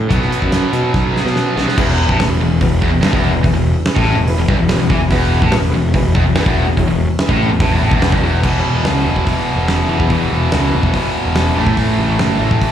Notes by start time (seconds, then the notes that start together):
0.10 B1 B2 F#3 B3, kick, closed hi-hat
0.22 snare
0.32 closed hi-hat
0.42 F#2, kick
0.52 snare, closed hi-hat
0.73 B2, closed hi-hat
0.94 B1, kick, snare
1.16 snare
1.25 B2, snare
1.36 snare
1.56 B1 B2 F#3 B3, snare
1.68 snare
1.78 E1 E2 E4 G#4 B4, kick, crash
2.09 A1 A2, kick
2.19 E1 E2 E4 G#4 B4, snare, open hi-hat
2.40 E1 E2
2.61 E1 E2 E4 G#4 B4, kick, open hi-hat
2.82 E1 E2, kick
2.91 E1 E2
3.01 G1 G2 E4 G#4 B4, snare, open hi-hat
3.13 E1 E2, kick
3.33 E1 E2
3.44 E1 E2 E4 G#4 B4, kick, open hi-hat
3.54 E1 E2
3.85 E4 G#4 B4, snare, open hi-hat
3.96 A1 A2, kick
4.16 E1 E2
4.27 E4 G#4 B4, open hi-hat
4.38 E1 E2
4.48 G1 G2, kick
4.58 E1 E2
4.68 E1 E2 E4 G#4 B4, snare, open hi-hat
4.78 E1 E2
4.90 E2 E3, kick
4.99 E1 E2
5.11 E1 E2 E4 G#4 B4, kick, open hi-hat
5.42 A1 A2, kick
5.52 E1 E2 E4 G#4 B4, snare, open hi-hat
5.72 E1 E2
5.94 E1 E2 E4 G#4 B4, kick, open hi-hat
6.15 E1 E2, kick
6.25 E1 E2
6.35 G1 G2 E4 G#4 B4, snare, open hi-hat
6.46 E1 E2, kick
6.66 E1 E2
6.77 E1 E2 E4 G#4 C#5, kick, open hi-hat
6.87 E1 E2
7.18 E4 G#4 B4, snare, open hi-hat
7.29 A1 A2, kick
7.50 E1 E2
7.59 A1 A2 E4 G#4 B4, kick, open hi-hat
7.71 E1 E2
7.80 A1 A2
7.91 E1 E2, kick
8.01 E4 G#4 B4, snare, open hi-hat
8.12 G1 G2, kick
8.21 E1 E2
8.42 E1 E2 B2 E3, kick, crash
8.64 E1
8.83 C#2, snare, open hi-hat
9.04 E1
9.16 kick
9.25 E2 B2, kick, open hi-hat
9.30 E3
9.56 E1
9.68 snare, open hi-hat
9.88 E2 B2 E3
10.00 E2, kick
10.09 E2 B2 E3, kick, open hi-hat
10.31 E1
10.52 C#2, snare, open hi-hat
10.73 E1
10.83 kick
10.93 E2 B2 E3, kick, open hi-hat
11.26 E1
11.35 snare, open hi-hat
11.56 A1 A2 E3
11.60 A3
11.66 A2, kick
11.77 kick, open hi-hat
11.98 A1
12.19 F#1, snare, open hi-hat
12.39 A1 A2 E3 A3
12.51 kick
12.61 kick, open hi-hat